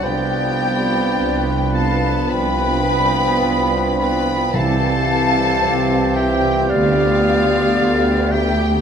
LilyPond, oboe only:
\new Staff \with { instrumentName = "Oboe" } { \time 4/4 \key g \mixolydian \tempo 4 = 54 g''4. a''8 b''4. b''8 | a''4. g''8 f''4. g''8 | }